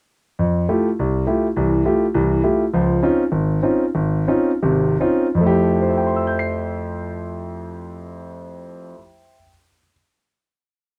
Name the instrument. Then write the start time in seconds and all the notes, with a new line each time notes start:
grand piano
0.39 F2
0.69 A3 E4 F4 G4
0.99 C2
1.27 A3 E4 F4 G4
1.56 C2 E3
1.85 A3 E4 F4 G4
2.14 C2 E3
2.43 A3 E4 F4 G4
2.74 C#2 F3
3.03 C4 C#4 D#4 F4
3.32 G#1
3.63 C4 C#4 D#4 F4
3.95 G#1
4.28 C4 C#4 D#4 F4
4.62 G#1 C3
5.00 C4 C#4 D#4 F4
5.35 F2 F3
5.41 A3 E4
5.47 G4
5.82 C5
5.89 E5
5.97 G5
6.07 C6
6.16 E6
6.27 G6
6.39 C7